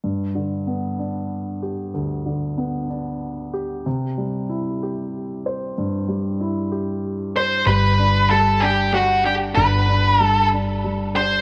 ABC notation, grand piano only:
X:1
M:6/8
L:1/8
Q:3/8=63
K:G
V:1 name="Grand piano"
G,, D, B, D2 G | D,, D, B, D2 G | C, G, E G2 c | G,, G, E G2 c |
G, D G, D G, D | D, D G, D G, D |]